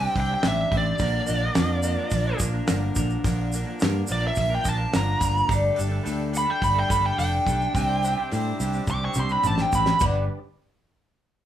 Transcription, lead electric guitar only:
0.00 0.04 A5 loud
0.04 0.15 G5 loud
0.20 0.32 G5 medium
0.34 0.46 G5 medium
0.48 0.73 E5 medium
0.77 2.40 D5 medium
4.12 4.25 D5 medium
4.27 4.53 E5 medium
4.55 4.67 G5 medium
4.69 4.95 A5 medium
4.96 5.50 A#5 medium
6.38 6.50 B5 loud
6.50 6.63 G5 medium
6.64 6.77 B5 loud
6.80 6.92 G5 medium
6.91 7.05 B5 loud
7.06 7.18 G5 medium
7.19 8.29 G5 loud
8.91 9.03 D6 loud
9.05 9.17 C#6 medium
9.20 9.32 C6 medium
9.32 9.45 B5 medium
9.47 9.62 A5 medium
9.62 9.74 G5 medium
9.75 10.01 B5 loud

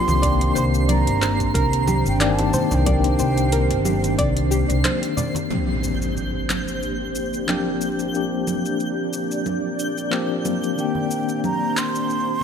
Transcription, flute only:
0.00 0.53 C6 loud
0.58 0.65 C6 loud
0.91 1.52 A#5 loud
1.56 2.03 A#5 loud
2.08 2.25 G5 medium
2.24 2.76 A5 medium
2.74 2.88 G5 medium
2.89 4.16 G5 medium
10.79 11.41 G5 medium
11.45 11.79 A#5 loud
11.78 12.43 C6 loud

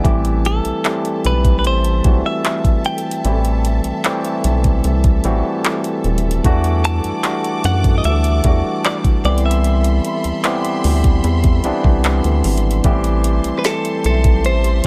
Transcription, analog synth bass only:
0.05 0.61 A1 loud
0.65 0.73 B1 soft
1.25 1.66 B1 medium
1.65 2.01 A1 medium
2.05 2.23 B1 loud
3.25 3.81 A1 medium
3.85 3.93 B1 soft
4.44 4.81 B1 medium
4.84 5.21 C2 loud
5.24 5.43 A1 medium
6.04 6.41 D#1 loud
6.45 7.01 E2 loud
7.04 7.12 F#2 soft
7.64 8.01 F#2 medium
8.04 8.41 D2 loud
8.45 8.63 E2 loud
9.24 10.00 C2 loud
10.24 10.32 D2 soft
10.84 11.21 D2 medium
11.24 11.61 E2 loud
11.64 11.72 C2 medium
11.85 12.21 C2 medium
12.24 12.43 D2 medium
12.45 12.81 G#1 medium
12.84 13.40 A1 loud
13.45 13.53 B1 soft
14.05 14.46 B1 medium
14.45 14.81 A1 medium

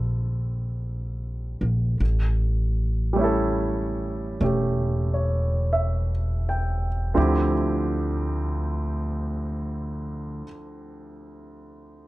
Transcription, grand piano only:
0.00 2.01 D3 soft
0.00 2.02 G3 soft
0.00 2.02 C4 soft
0.00 2.03 F4 soft
0.00 2.03 A4 soft
3.13 7.15 G3 soft
3.13 4.39 A3 soft
3.19 4.41 C#4 soft
3.19 7.15 E4 soft
3.24 7.20 A4 medium
4.41 7.17 A3 soft
4.41 7.17 C#4 soft
4.41 7.16 G4 soft
5.14 6.09 C#5 soft
5.73 6.88 E5 soft
6.49 7.53 G5 soft
7.14 10.42 D2 medium
7.14 10.43 D3 soft
7.14 10.43 F3 soft
7.14 10.44 C4 soft
7.14 10.44 E4 soft
7.14 10.45 G4 medium

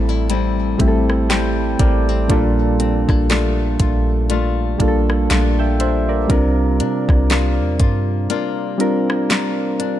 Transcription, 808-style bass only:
0.00 0.76 A1 loud
0.80 1.76 A1 loud
1.80 2.28 A1 loud
2.30 3.06 A#1 loud
3.09 3.77 A#1 loud
3.80 4.76 A#1 loud
4.80 5.28 A#1 loud
5.31 6.26 A#1 loud
6.30 6.82 C2 loud
6.80 7.08 C3 loud
7.09 7.61 C2 loud
7.60 7.79 E2 loud
7.80 8.28 G2 loud

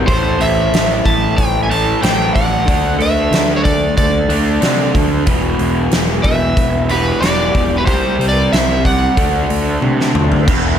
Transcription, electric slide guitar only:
0.07 0.41 C5 medium
0.41 1.08 E5 medium
1.06 1.36 A5 medium
1.37 1.63 G5 medium
1.63 1.70 G#5 medium
1.71 2.01 A5 medium
2.03 2.35 G5 medium
2.35 2.96 F#5 medium
3.02 3.61 E5 medium
3.56 3.64 C#5 medium
3.64 3.96 D5 medium
3.97 4.91 D5 medium
6.23 6.91 E5 medium
6.91 7.21 B4 medium
7.20 7.81 D5 medium
7.78 7.86 B4 medium
7.86 8.27 C5 medium
8.29 8.52 D5 medium
8.53 8.83 E5 medium
8.86 10.11 F#5 medium

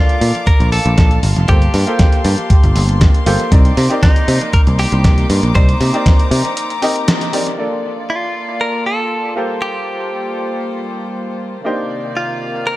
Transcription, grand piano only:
0.00 1.21 A#3 medium
0.00 1.22 D4 medium
0.00 1.22 F4 medium
0.00 1.22 A4 medium
0.00 1.22 D5 medium
1.48 1.56 A#3 medium
1.48 1.56 F4 medium
1.48 1.57 G4 medium
1.48 1.57 A4 medium
1.48 1.57 C5 medium
1.86 3.23 A#3 medium
1.86 3.23 F4 medium
1.86 3.24 G4 medium
1.86 3.24 A4 medium
1.86 3.24 C5 medium
3.26 3.49 A#3 medium
3.26 3.49 F4 medium
3.26 3.49 G4 medium
3.26 3.49 A4 medium
3.26 3.49 C5 loud
3.52 3.87 C4 medium
3.52 3.87 D#4 medium
3.52 3.88 G4 medium
3.52 3.88 A#4 medium
3.52 3.88 D5 loud
3.89 5.52 C4 medium
3.89 5.52 D#4 medium
3.89 5.52 G4 medium
3.89 5.53 A#4 medium
3.89 5.53 D5 medium
5.55 5.63 C4 medium
5.55 5.63 D#4 medium
5.55 5.63 G4 medium
5.55 5.64 A#4 medium
5.55 5.64 D5 loud
5.93 6.80 C4 medium
5.93 6.80 D#4 medium
5.93 6.80 G4 medium
5.93 6.80 A#4 medium
5.93 6.81 D5 medium
6.82 7.30 C4 medium
6.82 7.30 D#4 medium
6.82 7.30 G4 medium
6.82 7.31 A#4 medium
6.82 7.31 D#5 medium
7.33 7.56 C4 medium
7.33 7.56 D#4 medium
7.33 7.56 G4 medium
7.33 7.56 A#4 medium
7.33 7.56 D5 medium
7.58 9.33 A#3 medium
7.58 9.34 D4 medium
7.58 9.34 F4 medium
7.58 9.34 A4 medium
7.58 9.34 D5 medium
9.36 11.62 A#3 medium
9.36 11.62 F4 medium
9.36 11.63 G4 medium
9.36 11.63 A4 medium
9.36 11.63 C5 medium
11.64 12.77 A#3 medium
11.64 12.77 D4 medium
11.64 12.77 D#4 medium
11.64 12.77 G4 medium
11.64 12.77 C5 medium

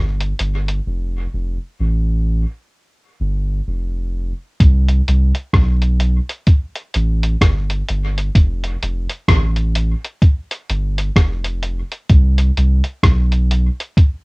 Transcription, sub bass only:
0.00 0.33 G1 loud
0.40 0.80 G1 loud
0.86 1.27 F1 loud
1.33 1.58 F1 loud
1.79 2.45 A1 medium
3.20 3.61 G1 medium
3.67 4.32 F1 medium
4.61 5.01 C2 loud
5.08 5.32 C2 loud
5.54 6.20 B1 medium
6.95 7.36 A1 medium
7.42 7.82 G1 medium
7.89 8.30 G1 medium
8.36 8.76 F1 loud
8.82 9.07 F1 loud
9.28 9.94 A1 medium
10.70 11.10 G1 medium
11.17 11.82 F1 medium
12.10 12.51 C2 loud
12.57 12.82 C2 medium
13.04 13.69 B1 medium

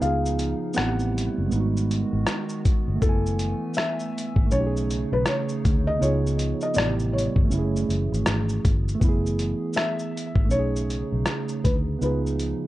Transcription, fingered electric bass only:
0.02 0.53 C#2 loud
0.77 1.28 A1 medium
1.38 1.50 F#1 medium
1.52 2.03 G#1 loud
2.13 2.25 G#1 medium
2.88 3.00 G1 medium
3.02 3.53 F#1 loud
4.36 4.49 G#1 loud
4.52 5.03 B1 loud
5.12 5.24 B1 medium
5.65 5.96 D2 medium
6.02 6.52 C#2 loud
6.77 7.27 A1 loud
7.36 7.49 G1 loud
7.52 7.83 F#1 loud
7.89 8.08 F#1 medium
8.12 8.24 G#1 medium
8.27 8.58 G#1 medium
8.65 8.96 G1 medium
9.01 9.52 F#1 medium
10.35 10.51 G#1 medium
10.51 11.02 B1 medium
11.12 11.24 B1 medium
11.65 11.96 D2 medium
12.01 12.52 C#2 loud

